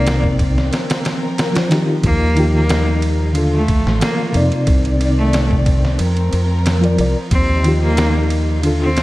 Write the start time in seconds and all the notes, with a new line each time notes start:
Already playing: C2 C3 D#3 A#3 C4 D#4 D5
0.07 snare, ride
0.24 kick
0.39 kick, ride
0.58 snare
0.71 F3 A#4, snare, ride
0.90 snare, ride
1.05 snare, ride
1.38 snare, ride
1.53 F3 F4 A#4, snare, ride
1.58 C5
1.69 D#3 D#4 F4, snare, ride
1.74 G4
2.04 D#2 G3 A#3 D#4, kick, ride
2.35 D#3 D#4 F4, ride
2.40 G4
2.54 A#3
2.69 snare, ride
3.02 ride
3.33 D3 F3 A3 D4 F4, ride
3.38 A4
3.53 A3
3.68 D2, kick, ride
3.87 A1, snare
4.01 A#3, snare, ride
4.32 F2 C3 C4 D#4, ride
4.37 D5
4.52 ride
4.67 C2 D#3 C4 D5, kick, ride
4.85 ride
4.96 C3 C4
5.01 D#4, ride
5.05 D5
5.18 A3
5.33 snare, ride
5.51 kick
5.66 kick, ride
5.85 snare
5.99 F2 F3 A#4, ride
6.17 ride
6.33 F2, ride
6.66 snare, ride
6.81 F3 F4 A#4, ride
6.85 D5
6.96 C2 F3 F4 A#4, ride
7.01 D5
7.31 D#2 G3 C4 D#4, kick, ride
7.63 D#3 D#4 F4, ride
7.68 G4
7.83 A#3
7.97 snare, ride
8.30 ride
8.62 D3 A3 D4 F4, ride
8.67 A4
8.81 C4
8.97 D2, snare, ride